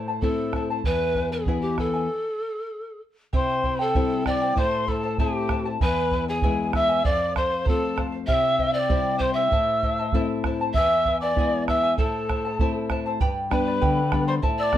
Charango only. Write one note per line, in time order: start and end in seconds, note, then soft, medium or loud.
0.08 0.22 E4 soft
0.08 0.22 C5 soft
0.08 0.22 A5 soft
0.22 0.54 E4 medium
0.22 0.53 A4 medium
0.22 0.54 C5 medium
0.22 0.54 E5 medium
0.22 0.54 A5 medium
0.55 0.70 E4 medium
0.55 0.70 C5 medium
0.55 0.70 E5 medium
0.55 0.69 A5 medium
0.70 0.85 E4 soft
0.70 0.85 C5 soft
0.70 0.85 A5 soft
0.85 1.15 E4 medium
0.85 1.16 G#4 medium
0.85 1.15 B4 medium
0.85 1.15 E5 medium
0.85 1.16 G#5 medium
1.16 1.32 E4 medium
1.16 1.31 B4 medium
1.16 1.31 E5 soft
1.16 1.31 G#5 medium
1.32 1.47 E4 soft
1.32 1.47 B4 soft
1.32 1.47 G#5 soft
1.48 1.77 E4 medium
1.48 1.78 G#4 medium
1.48 1.78 B4 medium
1.48 1.76 E5 medium
1.48 1.78 G#5 medium
1.78 1.94 E4 medium
1.78 1.93 B4 medium
1.78 1.93 E5 medium
1.78 1.92 G#5 medium
1.93 2.10 E4 soft
1.93 2.10 B4 soft
1.93 2.09 G#5 medium
3.33 3.63 E4 medium
3.33 3.64 G4 medium
3.33 3.64 C5 medium
3.33 3.63 E5 medium
3.33 3.64 G5 medium
3.64 3.79 E4 medium
3.64 3.79 C5 medium
3.64 3.80 E5 soft
3.64 3.78 G5 medium
3.79 3.94 E4 soft
3.79 3.95 C5 soft
3.79 3.95 G5 medium
3.95 4.26 E4 medium
3.95 4.26 G4 medium
3.95 4.26 C5 medium
3.95 4.25 E5 medium
3.95 4.27 G5 medium
4.26 4.42 E4 medium
4.26 4.42 C5 medium
4.26 4.42 E5 medium
4.26 4.40 G5 medium
4.42 4.56 E4 soft
4.42 4.56 C5 soft
4.42 4.57 G5 soft
4.57 4.87 E4 medium
4.57 4.88 A4 medium
4.57 4.87 C5 medium
4.57 4.86 E5 medium
4.57 4.87 A5 medium
4.87 5.04 E4 medium
4.87 5.02 C5 medium
4.87 5.03 E5 medium
4.87 5.02 A5 medium
5.03 5.18 E4 soft
5.03 5.19 C5 soft
5.03 5.19 A5 medium
5.19 5.49 E4 medium
5.19 5.50 A4 medium
5.19 5.49 C5 medium
5.19 5.48 E5 medium
5.19 5.50 A5 medium
5.49 5.65 E4 medium
5.49 5.65 C5 medium
5.49 5.65 E5 medium
5.49 5.64 A5 medium
5.65 5.80 E4 soft
5.65 5.81 C5 soft
5.65 5.81 A5 medium
5.81 6.12 E4 medium
5.81 6.12 G#4 medium
5.81 6.12 B4 medium
5.81 6.11 E5 medium
5.81 6.12 G#5 medium
6.12 6.28 E4 medium
6.12 6.28 B4 medium
6.12 6.28 E5 soft
6.12 6.27 G#5 medium
6.28 6.42 E4 soft
6.28 6.43 B4 soft
6.28 6.43 G#5 medium
6.43 6.73 E4 medium
6.43 6.74 G#4 medium
6.43 6.74 B4 medium
6.43 6.73 E5 medium
6.43 6.74 G#5 medium
6.74 6.89 E4 medium
6.74 6.89 B4 medium
6.74 6.90 E5 medium
6.74 6.88 G#5 medium
6.89 7.05 E4 soft
6.89 7.04 B4 soft
6.89 7.05 G#5 medium
7.04 7.35 A4 medium
7.04 7.35 C5 medium
7.04 7.36 F5 medium
7.36 7.51 A4 medium
7.36 7.50 C5 medium
7.36 7.49 F5 medium
7.51 7.64 C5 soft
7.51 7.64 F5 soft
7.65 7.94 A4 medium
7.65 7.95 C5 medium
7.65 7.96 F5 medium
7.96 8.12 A4 medium
7.96 8.12 C5 medium
7.96 8.11 F5 medium
8.12 8.27 C5 soft
8.12 8.27 F5 soft
8.27 8.57 E4 medium
8.27 8.59 G4 medium
8.27 8.58 C5 medium
8.27 8.57 E5 medium
8.27 8.58 G5 medium
8.58 8.74 E4 medium
8.58 8.73 C5 medium
8.58 8.74 E5 medium
8.58 8.72 G5 medium
8.73 8.89 E4 soft
8.73 8.89 C5 soft
8.73 8.89 G5 soft
8.90 9.19 E4 medium
8.90 9.21 G4 medium
8.90 9.20 C5 medium
8.90 9.18 E5 medium
8.90 9.20 G5 medium
9.20 9.36 E4 medium
9.20 9.36 C5 medium
9.20 9.36 E5 medium
9.20 9.35 G5 medium
9.37 9.51 E4 soft
9.37 9.51 C5 soft
9.37 9.52 G5 medium
9.52 9.82 E4 medium
9.52 9.83 A4 medium
9.52 9.83 C5 medium
9.52 9.81 E5 medium
9.52 9.83 A5 medium
9.83 9.98 E4 soft
9.83 9.99 C5 medium
9.83 9.98 E5 soft
9.83 9.98 A5 medium
9.99 10.13 E4 soft
9.99 10.13 C5 soft
9.99 10.14 A5 medium
10.14 10.45 E4 medium
10.14 10.44 A4 medium
10.14 10.45 C5 medium
10.14 10.44 E5 medium
10.14 10.45 A5 medium
10.45 10.60 E4 medium
10.45 10.61 C5 medium
10.45 10.60 E5 medium
10.45 10.60 A5 medium
10.61 10.76 E4 soft
10.61 10.76 C5 soft
10.61 10.76 A5 soft
10.77 11.06 E4 medium
10.77 11.07 G#4 medium
10.77 11.06 B4 medium
10.77 11.05 E5 medium
10.77 11.07 G#5 medium
11.06 11.22 E4 medium
11.06 11.22 B4 medium
11.06 11.21 E5 medium
11.06 11.21 G#5 medium
11.22 11.38 E4 soft
11.22 11.37 B4 medium
11.22 11.37 G#5 medium
11.38 11.68 E4 medium
11.38 11.68 G#4 medium
11.38 11.68 B4 medium
11.38 11.67 E5 medium
11.38 11.68 G#5 medium
11.68 11.83 E4 medium
11.68 11.83 B4 medium
11.68 11.83 E5 medium
11.68 11.82 G#5 medium
11.83 11.97 E4 soft
11.83 11.98 B4 soft
11.83 11.98 G#5 medium
11.98 12.28 E4 medium
11.98 12.29 A4 medium
11.98 12.29 C5 medium
11.98 12.27 E5 medium
11.98 12.29 A5 medium
12.29 12.44 E4 medium
12.29 12.45 C5 soft
12.29 12.44 E5 soft
12.29 12.44 A5 medium
12.45 12.59 E4 soft
12.45 12.59 C5 soft
12.45 12.60 A5 medium
12.60 12.90 E4 medium
12.60 12.90 A4 medium
12.60 12.90 C5 medium
12.60 12.89 E5 medium
12.60 12.90 A5 medium
12.90 13.06 E4 medium
12.90 13.05 C5 medium
12.90 13.05 E5 medium
12.90 13.05 A5 medium
13.06 13.21 E4 soft
13.06 13.20 C5 soft
13.06 13.21 A5 medium
13.21 13.51 G4 medium
13.21 13.51 B4 medium
13.21 13.51 D5 medium
13.21 13.51 G5 medium
13.21 13.52 B5 medium
13.52 13.67 B4 medium
13.52 13.66 D5 medium
13.52 13.67 G5 medium
13.52 13.66 B5 medium
13.67 13.80 B4 soft
13.67 13.81 D5 soft
13.67 13.81 B5 soft
13.81 14.12 G4 medium
13.81 14.12 B4 medium
13.81 14.12 D5 medium
13.81 14.12 G5 medium
13.81 14.13 B5 medium
14.13 14.28 B4 medium
14.13 14.27 D5 medium
14.13 14.28 G5 medium
14.13 14.27 B5 medium
14.28 14.42 B4 soft
14.28 14.43 D5 medium
14.28 14.43 B5 medium
14.42 14.72 E4 medium
14.42 14.73 A4 medium
14.42 14.73 C5 medium
14.42 14.72 E5 medium
14.42 14.73 A5 medium
14.73 14.78 E4 medium
14.73 14.78 A4 medium
14.73 14.78 E5 medium
14.73 14.78 A5 medium